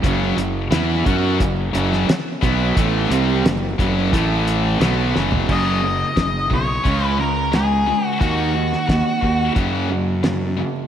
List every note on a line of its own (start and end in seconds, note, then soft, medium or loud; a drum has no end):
0.03 0.36 F#1 medium
0.03 0.35 F#2 medium
0.03 0.36 C#3 medium
0.03 0.37 F#3 medium
0.03 kick loud
0.03 closed hi-hat medium
0.37 0.69 F#1 medium
0.37 0.65 F#2 medium
0.37 0.65 C#3 medium
0.37 closed hi-hat medium
0.71 1.04 E2 medium
0.71 1.05 E3 medium
0.71 1.05 B3 loud
0.71 1.05 E4 medium
0.71 snare loud
0.71 closed hi-hat medium
1.06 1.38 F#2 medium
1.06 1.39 F#3 medium
1.06 1.39 C#4 medium
1.06 1.39 F#4 loud
1.06 kick loud
1.06 closed hi-hat medium
1.40 1.72 F#1 medium
1.40 1.67 F#2 medium
1.40 1.67 C#3 medium
1.40 kick medium
1.40 closed hi-hat medium
1.73 2.06 F#1 medium
1.73 2.07 F#2 loud
1.73 2.08 C#3 medium
1.73 2.08 F#3 medium
1.73 closed hi-hat medium
1.93 snare soft
2.08 muted distorted electric guitar stroke medium
2.08 muted fingered electric bass stroke soft
2.08 muted overdriven electric guitar stroke medium
2.08 snare loud
2.08 closed hi-hat medium
2.41 2.74 B1 medium
2.41 2.75 B2 loud
2.41 2.75 F#3 medium
2.41 2.75 B3 loud
2.41 kick loud
2.41 closed hi-hat medium
2.76 3.08 A1 medium
2.76 3.09 A2 medium
2.76 3.10 E3 medium
2.76 3.10 A3 loud
2.76 kick loud
2.76 closed hi-hat medium
3.10 3.42 C2 medium
3.10 3.43 C3 medium
3.10 3.44 G3 medium
3.10 3.44 C4 medium
3.10 closed hi-hat medium
3.44 3.76 F#1 medium
3.44 3.72 F#2 medium
3.44 3.72 C#3 medium
3.44 snare loud
3.44 closed hi-hat medium
3.79 4.10 F#1 medium
3.79 4.12 F#2 medium
3.79 4.12 C#3 medium
3.79 4.12 F#3 medium
3.79 kick loud
3.79 closed hi-hat medium
4.12 4.77 A1 medium
4.12 4.79 A2 medium
4.12 4.80 E3 medium
4.12 4.80 A3 medium
4.12 kick loud
4.12 closed hi-hat loud
4.48 closed hi-hat medium
4.80 5.12 B1 loud
4.80 5.13 B2 medium
4.80 5.14 F#3 loud
4.80 5.14 B3 loud
4.80 snare loud
4.80 closed hi-hat medium
5.14 5.47 F#1 medium
5.14 5.47 F#2 medium
5.14 5.47 C#3 medium
5.14 5.48 F#3 medium
5.14 snare medium
5.32 floor tom medium
5.48 6.02 F#1 loud
5.48 5.80 F#2 medium
5.48 5.80 C#3 medium
5.48 5.81 F#3 medium
5.48 6.55 D#5 medium
5.48 kick medium
5.48 crash medium
5.82 6.13 F#2 medium
5.82 6.13 C#3 medium
6.16 6.51 F#1 medium
6.16 6.47 F#2 medium
6.16 6.47 C#3 medium
6.16 kick medium
6.16 snare loud
6.16 closed hi-hat medium
6.50 6.77 B1 medium
6.50 6.81 F#2 medium
6.50 6.81 C#3 medium
6.50 kick medium
6.54 7.05 C#5 medium
6.84 7.91 C#2 medium
6.84 7.16 C#3 medium
6.84 7.16 G#3 medium
6.84 7.16 C#4 medium
6.84 kick loud
6.84 closed hi-hat medium
7.05 7.19 B4 medium
7.18 7.49 C#3 medium
7.18 7.49 G#3 medium
7.18 7.54 A#4 medium
7.52 7.83 C#3 medium
7.52 7.83 G#3 medium
7.52 8.06 G#4 medium
7.52 snare medium
7.52 closed hi-hat medium
7.86 8.17 C#3 medium
7.86 8.17 G#3 medium
8.06 8.20 F#4 medium
8.20 8.74 D#2 medium
8.20 8.52 D#3 medium
8.20 8.52 A#3 medium
8.20 8.53 D#4 medium
8.20 9.52 F#4 medium
8.20 kick loud
8.20 closed hi-hat medium
8.54 8.85 D#3 medium
8.54 8.85 A#3 medium
8.73 snare soft
8.87 9.02 D#2 medium
8.87 9.18 D#3 medium
8.87 9.19 A#3 medium
8.87 kick medium
8.87 snare medium
8.87 closed hi-hat medium
9.21 9.49 D#2 medium
9.21 9.52 D#3 medium
9.21 9.53 A#3 medium
9.21 kick medium
9.55 9.87 F#2 medium
9.55 10.62 F#2 medium
9.55 9.88 C#3 medium
9.55 9.88 F#3 medium
9.55 kick loud
9.55 closed hi-hat medium
9.89 10.20 F#2 medium
9.89 10.21 C#3 medium
10.23 10.54 F#2 medium
10.23 10.54 C#3 medium
10.23 snare loud
10.23 closed hi-hat soft
10.57 10.87 F#2 medium
10.57 10.87 C#3 medium